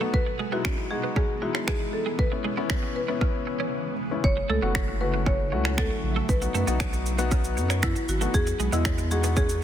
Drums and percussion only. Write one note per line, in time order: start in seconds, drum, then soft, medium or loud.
0.14 kick loud
0.65 finger snap loud
0.65 kick loud
1.16 kick loud
1.55 finger snap medium
1.68 finger snap loud
1.68 kick loud
2.19 kick loud
2.70 finger snap loud
2.70 kick loud
3.21 kick loud
4.24 kick loud
4.75 finger snap loud
4.75 kick loud
5.26 kick loud
5.65 finger snap medium
5.78 finger snap loud
5.78 kick loud
6.29 kick loud
6.29 shaker medium
6.42 shaker soft
6.55 shaker soft
6.68 shaker medium
6.80 finger snap loud
6.80 kick loud
6.80 shaker medium
6.93 shaker medium
7.06 shaker medium
7.19 shaker medium
7.31 kick loud
7.31 shaker medium
7.44 shaker medium
7.57 shaker medium
7.70 finger snap medium
7.70 shaker medium
7.83 finger snap loud
7.83 kick loud
7.83 shaker medium
7.96 shaker soft
8.09 shaker medium
8.21 shaker medium
8.34 kick loud
8.34 shaker medium
8.47 shaker soft
8.60 shaker soft
8.73 shaker medium
8.85 finger snap loud
8.85 kick loud
8.85 shaker medium
8.98 shaker medium
9.11 shaker medium
9.24 shaker medium
9.36 kick loud
9.36 shaker medium
9.49 shaker medium